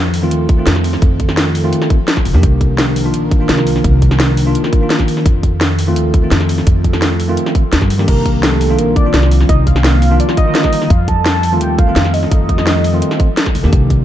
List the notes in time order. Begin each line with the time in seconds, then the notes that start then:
Already playing: F2 D#3 F3 A4
0.14 open hi-hat
0.22 D#3 A3 C4 F4
0.31 D#2, closed hi-hat
0.49 kick, closed hi-hat
0.57 D#3 A3 C4 F4
0.67 F2, snare, closed hi-hat
0.76 snare
0.84 open hi-hat
0.93 snare
1.02 F2, kick, closed hi-hat
1.20 kick, closed hi-hat
1.29 snare
1.37 snare, closed hi-hat
1.55 open hi-hat
1.63 D#3 A3 C4 F4
1.73 closed hi-hat
1.82 snare
1.90 kick, closed hi-hat
2.08 snare, closed hi-hat
2.17 kick, snare
2.25 F1, open hi-hat
2.33 F2 D#3 A#3 D4 G4, snare
2.43 C2 D4 A#4, kick, closed hi-hat
2.61 kick, closed hi-hat
2.78 snare, closed hi-hat
2.96 open hi-hat
3.04 D#3 A#3 D4 F4
3.14 A#1, closed hi-hat
3.31 kick, closed hi-hat
3.39 D#3 A#3 D4 F4
3.49 C2, snare, closed hi-hat
3.58 snare
3.67 open hi-hat
3.76 snare
3.84 C2, kick, closed hi-hat
4.02 kick, closed hi-hat
4.11 snare
4.20 snare, closed hi-hat
4.37 open hi-hat
4.46 D#3 A#3 D4 F4
4.55 closed hi-hat
4.64 snare
4.73 kick, closed hi-hat
4.81 D#3 A#3 D4 F4
4.90 snare, closed hi-hat
4.99 kick, snare
5.08 open hi-hat
5.17 snare
5.26 F2 F3 A4, kick, closed hi-hat
5.43 kick, closed hi-hat
5.61 snare, closed hi-hat
5.79 open hi-hat
5.87 D#3 A3 C4 F4
5.96 D#2, closed hi-hat
6.14 kick, closed hi-hat
6.22 D#3 A3 C4 F4
6.32 F2, snare, closed hi-hat
6.41 snare
6.49 open hi-hat
6.58 snare
6.67 F2, kick, closed hi-hat
6.84 kick, closed hi-hat
6.93 snare
7.02 snare, closed hi-hat
7.20 open hi-hat
7.28 D#3 A3 C4 F4
7.37 closed hi-hat
7.46 snare
7.55 kick, closed hi-hat
7.73 D#2, snare, closed hi-hat
7.82 G2, kick, snare
7.90 open hi-hat
7.98 D#3 A#3 D4 G4, snare
8.08 C2 G3 A#3 C4 A#4, kick, closed hi-hat, crash
8.26 kick, closed hi-hat
8.43 A4, snare, closed hi-hat
8.61 open hi-hat
8.69 D#3 A#3 D4 F4
8.79 A#1 A#4, closed hi-hat
8.96 D5, kick, closed hi-hat
9.04 D#3 A#3 D4 F4
9.14 C2, snare, closed hi-hat
9.23 snare
9.31 open hi-hat
9.41 snare
9.49 C2 D#5, kick, closed hi-hat
9.67 F5, kick, closed hi-hat
9.76 snare
9.84 snare, closed hi-hat
10.02 open hi-hat
10.10 D#3 A#3 D4 F4
10.20 D5, closed hi-hat
10.29 snare
10.37 D#5, kick, closed hi-hat
10.45 D3 D#3 A#3 F4
10.55 snare, closed hi-hat
10.64 kick, snare
10.73 open hi-hat
10.82 snare
10.90 F2 F3 A4 F5, kick, closed hi-hat
11.08 A5, kick, closed hi-hat
11.26 snare, closed hi-hat
11.43 open hi-hat
11.52 D#3 A3 C4 F4
11.61 D#2 G5, closed hi-hat
11.79 F5, kick, closed hi-hat
11.86 D#3 A3 C4 F4
11.96 F2, snare, closed hi-hat
12.05 F5, snare
12.14 D#5, open hi-hat
12.23 snare
12.31 F2, kick, closed hi-hat
12.49 kick, closed hi-hat
12.58 snare
12.67 snare, closed hi-hat
12.84 open hi-hat
12.93 D#3 A3 C4 F4
13.02 closed hi-hat
13.11 snare
13.20 kick, closed hi-hat
13.37 snare, closed hi-hat
13.46 kick, snare
13.55 F1, open hi-hat
13.63 F2 D#3 A#3 D4 G4, snare
13.73 C2 D4 A#4, kick, closed hi-hat
13.90 kick, closed hi-hat